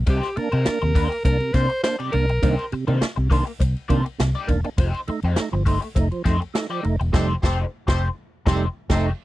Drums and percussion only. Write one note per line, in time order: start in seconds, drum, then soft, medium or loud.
0.06 kick loud
0.06 ride medium
0.23 snare soft
0.23 ride soft
0.37 ride medium
0.52 ride soft
0.66 snare loud
0.66 ride medium
0.82 ride soft
0.95 kick loud
0.95 open hi-hat medium
0.95 ride medium
1.12 ride soft
1.25 kick loud
1.25 hi-hat pedal medium
1.25 ride medium
1.40 ride soft
1.54 kick loud
1.54 snare soft
1.54 ride medium
1.70 ride soft
1.84 snare loud
1.84 ride medium
2.00 ride soft
2.13 ride medium
2.29 ride soft
2.43 kick loud
2.43 ride loud
2.59 ride soft
2.72 ride medium
2.88 ride soft
3.02 snare loud
3.02 ride medium
3.31 kick medium
3.31 open hi-hat medium
3.31 ride medium
3.47 ride soft
3.60 kick loud
3.60 hi-hat pedal medium
3.60 ride medium
3.76 ride soft
3.90 kick loud
3.90 ride medium
4.06 ride soft
4.20 snare loud
4.20 ride medium
4.35 ride soft
4.49 kick medium
4.49 ride medium
4.64 ride soft
4.78 kick loud
4.78 ride loud
4.94 ride soft
5.08 ride medium
5.22 ride soft
5.36 snare loud
5.36 ride medium
5.66 kick medium
5.66 open hi-hat medium
5.66 ride medium
5.82 ride soft
5.96 kick loud
5.96 hi-hat pedal medium
5.96 ride medium
6.12 ride soft
6.25 kick medium
6.25 snare soft
6.25 ride medium
6.42 ride soft
6.55 snare loud
6.55 ride medium
6.84 ride medium
7.01 ride soft
7.14 kick loud
7.14 snare loud
7.14 crash medium
7.43 kick loud
7.43 snare loud
7.88 kick loud
7.88 snare loud
8.47 kick loud
8.47 snare loud
8.90 kick loud
8.90 snare loud
8.90 crash medium